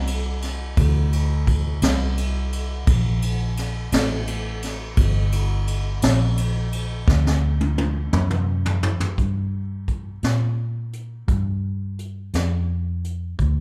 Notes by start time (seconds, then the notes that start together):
Already playing: C2
0.07 ride
0.42 snare, ride
0.77 D2, kick, ride
1.13 ride
1.47 kick, ride
1.82 C2, snare, ride
2.18 ride
2.53 ride
2.87 A#1, kick, ride
3.22 ride
3.57 snare, ride
3.92 A1, snare, ride
4.27 ride
4.62 snare, ride
4.97 G1, kick, ride
5.32 ride
5.67 ride
6.02 A#1, snare, ride
6.37 ride
6.73 ride
7.08 D2, kick, snare
7.27 snare
7.61 high tom
7.78 high tom
8.13 F#2, mid tom
8.30 mid tom
8.66 floor tom
8.83 floor tom
9.00 floor tom
9.18 G2, kick, closed hi-hat
9.88 kick, closed hi-hat
10.23 A#2, snare, closed hi-hat
10.93 closed hi-hat
11.28 G2, kick, closed hi-hat
11.99 closed hi-hat
12.34 F2, snare, closed hi-hat
13.04 closed hi-hat
13.39 D2, kick, closed hi-hat